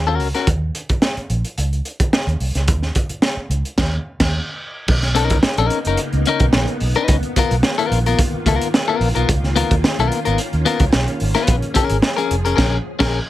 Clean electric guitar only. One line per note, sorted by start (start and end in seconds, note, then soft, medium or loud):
0.07 0.27 C#4 medium
0.07 0.27 F#4 medium
0.07 0.27 A#4 medium
0.35 0.48 C#4 medium
0.35 0.48 F#4 medium
0.35 0.48 A#4 medium
5.15 5.36 C#4 medium
5.15 5.36 D#4 medium
5.15 5.37 A#4 medium
5.58 5.79 C#4 medium
5.58 5.78 D#4 medium
5.58 5.78 A#4 medium
5.87 6.00 C#4 soft
5.87 5.99 D#4 medium
5.87 5.99 A#4 medium
6.27 6.45 C#4 medium
6.27 6.45 D#4 medium
6.27 6.46 A#4 medium
6.96 7.16 C#4 medium
6.96 7.16 D#4 medium
6.96 7.15 B4 loud
7.37 7.55 B3 medium
7.37 7.55 F4 medium
7.37 7.55 A#4 medium
7.78 7.99 B3 medium
7.78 7.98 F4 medium
7.78 7.98 A#4 medium
8.06 8.20 B3 medium
8.06 8.19 F4 medium
8.06 8.19 A#4 medium
8.46 8.67 B3 medium
8.46 8.67 F4 medium
8.46 8.68 A#4 medium
8.88 9.08 B3 medium
8.88 9.08 F4 medium
8.88 9.08 A#4 medium
9.15 9.29 B3 medium
9.15 9.29 F4 medium
9.15 9.28 A#4 medium
9.56 9.74 B3 medium
9.56 9.74 F4 medium
9.56 9.74 A#4 loud
10.00 10.19 B3 medium
10.00 10.19 F4 medium
10.00 10.18 A#4 medium
10.25 10.39 B3 medium
10.25 10.39 F4 medium
10.25 10.38 A#4 medium
10.65 10.84 B3 loud
10.65 10.84 F4 loud
10.65 10.84 A#4 medium
11.35 11.55 B3 medium
11.35 11.55 F4 medium
11.35 11.55 B4 loud
11.74 11.95 C#4 loud
11.74 11.96 G#4 loud
11.74 11.96 A#4 loud
12.16 12.35 C#4 medium
12.16 12.35 G#4 medium
12.16 12.34 A#4 medium
12.45 12.56 C#4 medium
12.45 12.55 G#4 medium
12.45 12.54 A#4 medium
12.56 12.77 C#4 loud
12.56 12.76 G#4 medium
12.56 12.76 A#4 medium
12.99 13.18 C#4 loud
12.99 13.18 G#4 loud
12.99 13.19 A#4 loud